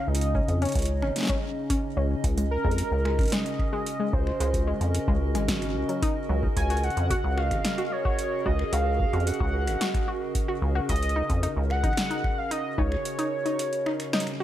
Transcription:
Already playing: ambient pad C#3 C#4 D#4 D#5
0.08 acid bass C#2, soft synth lead D#5
0.15 closed hi-hat
0.21 closed hi-hat
0.35 synth pluck C#4, kick
0.48 acid bass F2, closed hi-hat
0.62 synth pluck C#4, soft synth lead C#5, closed hi-hat
0.65 closed hi-hat
0.69 closed hi-hat
0.72 acid bass C#2, kick, closed hi-hat
0.75 closed hi-hat
0.79 closed hi-hat
0.82 closed hi-hat
0.85 closed hi-hat
1.02 acid bass G#1, synth pluck C#4, finger snap
1.16 snare, closed hi-hat
1.18 snare
1.20 snare
1.23 snare
1.25 snare
1.27 synth pluck C#4, finger snap, kick, snare, closed hi-hat
1.70 synth pluck C#4, kick, closed hi-hat
1.97 acid bass C#2, synth pluck C#4
2.24 acid bass C#2, kick, closed hi-hat
2.38 synth pluck G#3, closed hi-hat
2.47 ambient pad F#4
2.51 soft synth lead A#4, ambient pad A#4
2.64 acid bass F2, synth pluck G#3, kick
2.71 closed hi-hat
2.78 closed hi-hat
2.91 acid bass C#2
3.05 synth pluck G#3, finger snap
3.19 acid bass G#1, finger snap, kick, closed hi-hat
3.21 closed hi-hat
3.23 closed hi-hat
3.26 closed hi-hat
3.28 closed hi-hat
3.30 synth pluck G#3, soft synth lead D#5, snare, closed hi-hat
3.32 closed hi-hat
3.46 closed hi-hat
3.59 finger snap, kick
3.73 synth pluck G#3
3.86 closed hi-hat
4.00 synth pluck G#3
4.13 acid bass C#2, soft synth lead C5, kick
4.27 finger snap
4.40 acid bass C#2, synth pluck G#3, closed hi-hat
4.54 kick, closed hi-hat
4.67 synth pluck G#3
4.81 acid bass F2, closed hi-hat
4.95 closed hi-hat
5.08 acid bass C#2, synth pluck G#3, kick
5.35 acid bass G#1, synth pluck G#3, finger snap, closed hi-hat
5.48 kick, snare, closed hi-hat
5.62 finger snap, closed hi-hat
5.75 acid bass C#2
5.89 synth pluck F#3, closed hi-hat
6.02 synth pluck D#4, kick, closed hi-hat
6.29 acid bass C#2, synth pluck F#3
6.43 kick
6.56 acid bass C#2, soft synth lead G#5, kick, closed hi-hat
6.70 synth pluck F#4, closed hi-hat
6.77 ambient pad G#4, closed hi-hat
6.84 soft synth lead F#5, closed hi-hat
6.90 closed hi-hat
6.97 acid bass F2, closed hi-hat
7.10 synth pluck F#4, kick, closed hi-hat
7.24 acid bass C#2
7.38 synth pluck F#4, soft synth lead F5, finger snap
7.51 acid bass G#1, finger snap, kick, closed hi-hat
7.65 snare, closed hi-hat
7.78 synth pluck F#4, closed hi-hat
7.92 soft synth lead C#5
8.05 synth pluck F#4, kick
8.19 closed hi-hat
8.46 acid bass C#2, synth pluck F#4, soft synth lead D#5, kick
8.59 finger snap
8.73 acid bass C#2, synth pluck F#4, soft synth lead F5, closed hi-hat
9.00 kick
9.13 acid bass F2, synth pluck F#4, closed hi-hat
9.20 closed hi-hat
9.27 soft synth lead F#5, closed hi-hat
9.40 acid bass C#2, synth pluck F#4, kick
9.67 acid bass G#1, finger snap, closed hi-hat
9.81 synth pluck F#4, snare, closed hi-hat
9.94 finger snap, kick, closed hi-hat
10.08 synth pluck F#4
10.35 kick, closed hi-hat
10.48 synth pluck F#4
10.62 acid bass C#2
10.75 synth pluck F#4
10.89 acid bass C#2, soft synth lead D#5, kick, closed hi-hat
10.96 closed hi-hat
11.03 closed hi-hat
11.09 closed hi-hat
11.16 synth pluck D#4
11.29 acid bass F2, kick, closed hi-hat
11.43 synth pluck D#4, closed hi-hat
11.56 acid bass C#2
11.70 soft synth lead F#5, finger snap
11.83 acid bass G#1, synth pluck D#4, finger snap, kick, closed hi-hat
11.93 finger snap
11.97 snare, closed hi-hat
12.02 finger snap
12.10 synth pluck D#4, closed hi-hat
12.24 finger snap, kick
12.38 soft synth lead F5
12.51 synth pluck D#4, soft synth lead D#5, closed hi-hat
12.78 acid bass C#2, synth pluck D#4, soft synth lead C#5, kick
12.92 finger snap
13.05 closed hi-hat
13.19 synth pluck D#4, closed hi-hat
13.46 synth pluck D#4, closed hi-hat
13.59 closed hi-hat
13.73 closed hi-hat
13.86 synth pluck D#4, finger snap
14.00 finger snap, closed hi-hat
14.13 synth pluck D#4, snare
14.20 closed hi-hat
14.27 finger snap, closed hi-hat
14.40 synth pluck F#4

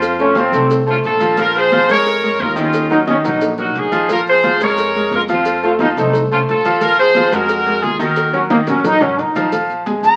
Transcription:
Already playing: upright bass F2, grand piano F3 F4 F5, horn section C4 F4
0.02 cowbell, high conga, maracas
0.19 grand piano A3 A4 C5, trombone section C#4, high conga, maracas
0.35 grand piano F3 F4 F5, trombone section C4, cowbell, high conga, maracas
0.52 upright bass C2, grand piano A3 A4 C5, cowbell, high conga, low conga, maracas
0.70 cowbell, high conga, maracas
0.87 grand piano A3 A4 C5, horn section C#4 F4, high conga, maracas
1.04 upright bass A#1, horn section F4 A4, cowbell, high conga, maracas
1.20 grand piano F3 F4 F5, cowbell, high conga, maracas
1.37 grand piano F3 F4 F5, horn section F4 A#4, cowbell, high conga, maracas
1.55 horn section G#4 C5, high conga, maracas
1.72 grand piano F3 F4 F5, cowbell, high conga, maracas
1.89 upright bass F2, grand piano G#3 G#4 A#4, horn section A#4 C#5, cowbell, high conga, maracas
2.06 cowbell, high conga, maracas
2.23 grand piano G#3 G#4 A#4, high conga, maracas
2.39 upright bass D#2, horn section F4 A#4, cowbell, high conga, maracas
2.56 grand piano D#3 D#4 D#5, horn section C#4 F4, cowbell, high conga, maracas
2.73 cowbell, high conga, maracas
2.90 grand piano F#3 F#4 A#4, trombone section D#4, maracas
3.07 grand piano D#3 D#4 D#5, trombone section C#4, cowbell, high conga, maracas
3.24 upright bass A#1, grand piano F#3 F#4 A#4, trombone section D#4, cowbell, high conga, low conga, maracas
3.41 cowbell, maracas
3.58 grand piano F#3 F#4 A#4, horn section D#4 F#4, high conga, maracas
3.75 upright bass A#1, horn section D#4 G#4, cowbell, high conga, maracas
3.92 grand piano F3 F4 F5, cowbell, high conga, maracas
4.09 grand piano F3 F4 F5, horn section F4 A#4, cowbell, high conga, maracas
4.27 horn section G#4 C5, high conga, maracas
4.43 grand piano F3 F4 F5, cowbell, high conga, maracas
4.60 upright bass F2, grand piano G#3 G#4 A#4, horn section A#4 C#5, cowbell, high conga, maracas
4.77 cowbell, high conga, maracas
4.95 grand piano G#3 G#4 A#4, high conga, maracas
5.11 upright bass F2, cowbell, high conga, maracas
5.15 horn section F4 A#4
5.28 grand piano F3 F4 F5, horn section C4, cowbell, high conga, maracas
5.33 horn section F4
5.45 cowbell, high conga, maracas
5.62 grand piano A3 A4 C5, trombone section F4, high conga, maracas
5.79 grand piano F3 F4 F5, trombone section D#4, cowbell, high conga, maracas
5.96 upright bass C2, grand piano A3 A4 C5, trombone section D#4, cowbell, high conga, low conga, maracas
6.13 cowbell, high conga, low conga, maracas
6.31 upright bass C2, grand piano A3 A4 C5, horn section C#4 F4, high conga, maracas
6.48 upright bass A#1, horn section F4 A4, cowbell, high conga, maracas
6.64 grand piano F3 F4 F5, cowbell, high conga, maracas
6.81 grand piano F3 F4 F5, horn section F4 A#4, cowbell, high conga, maracas
6.98 horn section G#4 C5, high conga, maracas
7.15 grand piano F3 F4 F5, cowbell, high conga, maracas
7.32 upright bass F2, grand piano G#3 G#4 A#4, horn section F#4 A#4, cowbell, high conga, maracas
7.49 cowbell, high conga, maracas
7.66 grand piano G#3 G#4 A#4, high conga, maracas
7.82 upright bass D#2, horn section F4 G#4, cowbell, high conga, maracas
7.99 grand piano D#3 D#4 D#5, horn section F#4 A#4, cowbell, high conga, maracas
8.16 cowbell, high conga, maracas
8.33 grand piano F#3 F#4 A#4, trombone section C#4, high conga, maracas
8.50 grand piano D#3 D#4 D#5, trombone section A#3, cowbell, high bongo, high conga, maracas
8.67 upright bass A#1, grand piano F#3 F#4 A#4, trombone section C#4, cowbell, high conga, maracas
8.84 trombone section D#4, cowbell, low bongo, low conga, maracas
9.01 upright bass G#1, grand piano F#3 F#4 A#4, trombone section C#4, low bongo, low conga, maracas
9.18 upright bass A#1, trombone section D#4, cowbell, maracas
9.35 grand piano F3 F4 F5, cowbell, low bongo, low conga, maracas
9.52 grand piano F3 F4 F5, cowbell, high conga, maracas
9.69 high conga, maracas
9.86 grand piano G#3 G#4 G#5, cowbell, high conga, maracas
10.03 upright bass F2, flute A#5, cowbell, high conga, maracas

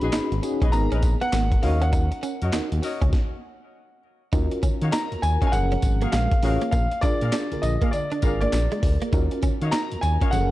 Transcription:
Already playing: fm electric piano C#4 D#4 F#4 G#4 B4, grand piano B5
0.01 analog synth bass A#1, fm electric piano C#4 D#4 F#4 G#4, horn section F#4 G#4 B4 D#5, closed hi-hat
0.12 analog synth bass G#1, clean electric guitar D#4, snare, clap, closed hi-hat, tambourine
0.32 analog synth bass G#1, closed hi-hat
0.42 fm electric piano C#4 D#4 F#4 G#4, muted clean electric guitar stroke, closed hi-hat, tambourine
0.61 analog synth bass B1, clean electric guitar C#4, horn section F#4 G#4 B4 D#5, kick, closed hi-hat
0.72 analog synth bass G#1, fm electric piano B3 D#4 G#4 A#4, grand piano A#5, closed hi-hat, tambourine
0.92 analog synth bass A#1, clean electric guitar C#4, horn section G#4 A#4 B4 D#5, closed hi-hat
1.03 muted clean electric guitar stroke, kick, closed hi-hat, tambourine
1.21 clean electric guitar B3, grand piano F#5, closed hi-hat
1.33 analog synth bass G#1, clean electric guitar A#3, snare, clap, closed hi-hat, tambourine
1.52 kick, closed hi-hat
1.63 analog synth bass D#2, fm electric piano C#4 D#4 F#4 A#4, horn section F#4 A#4 C#5 D#5, grand piano F5, muted clean electric guitar stroke, open hi-hat
1.81 clean electric guitar C#4, grand piano F#5, closed hi-hat
1.93 clean electric guitar D#4, kick, closed hi-hat, tambourine
2.12 muted clean electric guitar stroke, closed hi-hat
2.23 clean electric guitar C#4, closed hi-hat, tambourine
2.41 analog synth bass F#2, horn section F#4 A#4 C#5 D#5, closed hi-hat
2.53 analog synth bass D#2, clean electric guitar D#4, snare, clap, closed hi-hat, tambourine
2.72 analog synth bass D#2, closed hi-hat
2.82 horn section F#4 A#4 C#5 D#5, muted clean electric guitar stroke, open hi-hat, tambourine
3.01 analog synth bass C#2, clean electric guitar C#4, kick, closed hi-hat
3.13 kick, snare
4.33 analog synth bass D#2, fm electric piano C#4 F4 F#4 A#4, clean electric guitar D#4, kick, closed hi-hat, tambourine
4.51 muted clean electric guitar stroke, closed hi-hat
4.63 analog synth bass D#3, clean electric guitar C#4, kick, closed hi-hat, tambourine
4.81 analog synth bass D#3, horn section F#4 C#5 D#5 F5, closed hi-hat
4.92 clean electric guitar D#4, grand piano A#5, snare, clap, closed hi-hat, tambourine
5.12 analog synth bass D#2, closed hi-hat
5.22 analog synth bass D#2, grand piano G#5, muted clean electric guitar stroke, closed hi-hat, tambourine
5.42 clean electric guitar C#4, horn section F#4 C#5 D#5 F5, kick, closed hi-hat
5.47 grand piano G#5
5.52 analog synth bass F#1, fm electric piano F3 C#4 G#4 A#4, grand piano F#5, closed hi-hat, tambourine
5.72 clean electric guitar C#4, closed hi-hat
5.82 analog synth bass G#1, muted clean electric guitar stroke, kick, closed hi-hat, tambourine
6.01 clean electric guitar A#3, horn section F#4 G#4 A#4 F5, closed hi-hat
6.12 analog synth bass A#1, clean electric guitar G#3, grand piano F5, snare, clap, closed hi-hat, tambourine
6.31 kick, closed hi-hat
6.43 analog synth bass A1, fm electric piano C#4 F4 G#4 C#5, horn section F#4 G#4 A#4 F5, muted clean electric guitar stroke, open hi-hat
6.61 clean electric guitar A#3, closed hi-hat
6.71 analog synth bass A#1, clean electric guitar A#3, grand piano F5, kick, closed hi-hat, tambourine
6.91 muted clean electric guitar stroke, closed hi-hat
7.01 analog synth bass A#2, fm electric piano D4 F4 G#4 A#4, clean electric guitar D4, grand piano D5, kick, closed hi-hat, tambourine
7.21 analog synth bass A#2, horn section G#4 A#4 D5 F5, closed hi-hat
7.32 clean electric guitar D4, snare, clap, closed hi-hat, tambourine
7.52 analog synth bass A#1, fm electric piano D3 F4 G#4 A#4, closed hi-hat
7.62 analog synth bass A#1, grand piano D#5, muted clean electric guitar stroke, closed hi-hat, tambourine
7.82 clean electric guitar A#3, horn section G#4 A#4 D5 F5, kick, closed hi-hat
7.91 grand piano D5, closed hi-hat, tambourine
8.12 clean electric guitar D4, closed hi-hat
8.22 analog synth bass G#1, fm electric piano D4 F4 G#4 A#4, horn section G#4 A#4 D5 F5, muted clean electric guitar stroke, kick, closed hi-hat, tambourine
8.41 clean electric guitar A#3, grand piano D5, closed hi-hat
8.53 analog synth bass A#1, snare, clap, closed hi-hat, tambourine
8.72 clean electric guitar G#3, closed hi-hat
8.83 analog synth bass D2, muted clean electric guitar stroke, kick, open hi-hat
9.02 clean electric guitar A#3, closed hi-hat
9.13 analog synth bass D#2, fm electric piano C#4 F4 F#4 A#4, clean electric guitar D#4, kick, closed hi-hat, tambourine
9.31 muted clean electric guitar stroke, closed hi-hat
9.42 analog synth bass D#3, clean electric guitar C#4, kick, closed hi-hat, tambourine
9.62 analog synth bass D#3, horn section F#4 C#5 D#5 F5, closed hi-hat
9.71 clean electric guitar D#4, grand piano A#5, snare, clap, closed hi-hat, tambourine
9.92 analog synth bass D#2, closed hi-hat
10.01 analog synth bass D#2, grand piano G#5, muted clean electric guitar stroke, closed hi-hat, tambourine
10.21 clean electric guitar C#4, horn section F#4 C#5 D#5 F5, kick, closed hi-hat
10.31 analog synth bass F#1, fm electric piano F3 C#4 G#4 A4, grand piano F#5, closed hi-hat, tambourine
10.41 fm electric piano A#4

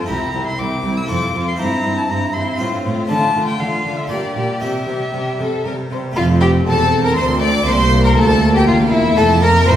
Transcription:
0.05 harpsichord C4 E4 G4, violin A#5
0.09 harpsichord C2, cello section C2, viola section C4, violin section E4 G4
0.33 harpsichord C2, cello section C2, viola section C4, violin section E4 G4
0.47 violin C6
0.58 harpsichord C2, cello section C2, viola section C4, violin section E4 G4, violin D6
0.84 harpsichord C2, cello section C2, viola section C4, violin section E4 G4
0.97 violin E6
1.05 harpsichord C4 F4 A4
1.09 harpsichord F2, cello section F2, viola section C4, violin section F4 A4, violin D6
1.34 harpsichord F2, cello section F2, viola section C4, violin section F4 A4
1.48 violin C6
1.54 harpsichord C4 E4 C5
1.59 harpsichord G2, cello section G2, viola section C4, violin section E4 C5, violin A#5
1.84 harpsichord G2, cello section G2, viola section C4, violin section E4 C5
1.98 violin A5
2.09 harpsichord G2, cello section G2, viola section C4, violin section E4 C5, violin A#5
2.34 cello section G2, harpsichord G2, viola section C4, violin section E4 C5, violin C6
2.56 harpsichord C4 F4 C5
2.60 harpsichord A2, cello section A2, viola section C4, violin section F4 C5
2.85 harpsichord A2, cello section A2, viola section C4, violin section F4 C5
3.06 harpsichord A3 F4 D5
3.10 cello section D3, harpsichord D3, viola section A3, violin section F4 D5, violin A5
3.35 cello section D3, harpsichord D3, viola section A3, violin section F4 D5
3.47 violin G5
3.60 cello section D3, harpsichord D3, viola section A3, violin section F4 D5, violin F5
3.85 cello section D3, harpsichord D3, viola section A3, violin section F4 D5
3.98 violin E5
4.07 harpsichord A#2 G4 D5, cello section A#2, viola section G3, violin section G4 D5, violin D5
4.35 cello section A#2, harpsichord A#2, viola section G3, violin section G4 D5, violin D5
4.60 cello section C3, harpsichord C3 G4 C5, viola section G3, violin section G4 C5, violin E5
4.87 cello section C3, harpsichord C3, viola section G3, violin section G4 C5
5.13 cello section C3, harpsichord C3, viola section G3, violin section G4 C5
5.39 harpsichord C3, cello section C3, viola section G3, violin section A4 C5
5.64 cello section C3, harpsichord C3, viola section G3, violin section A#4 C5
5.90 cello section C3, harpsichord C3, viola section G3, violin section C5
6.12 harpsichord A3 F4 A4
6.16 double bass section F1, cello section F2, harpsichord F2, viola section C4, violin section F4 F5, violin F4
6.41 violin G4, violin section G4 G5
6.67 double bass section E1, harpsichord E2, cello section E2, viola section C4, violin section A4 A5, violin A4
7.04 violin section A#4 A#5, violin A#4
7.16 cello section D2, double bass section D2, harpsichord D2, viola section C4, violin section C5 C6, violin C5
7.40 violin D5, violin section D5 D6
7.63 harpsichord A#3 E4 G4, violin C5, violin section C5 C6
7.67 cello section C2, harpsichord C2, double bass section C2, viola section A#3
8.04 violin section A#4 A#5, violin A#4
8.16 cello section D2, double bass section D2, harpsichord D2, violin section A4 A5, violin A4
8.54 violin section G4 G5, violin G4
8.67 double bass section E1, cello section E2, harpsichord E2, violin section F4 F5, violin F4
8.92 violin section E4 E5, violin E4
9.14 cello section F2, harpsichord A3 F4 A4, viola section A3, violin section A4 A5, violin A4
9.19 double bass section F1, harpsichord F2
9.42 violin section A#4 A#5, violin A#4
9.67 double bass section A1, cello section A2, harpsichord A2, viola section A3, violin section C5 C6, violin C5

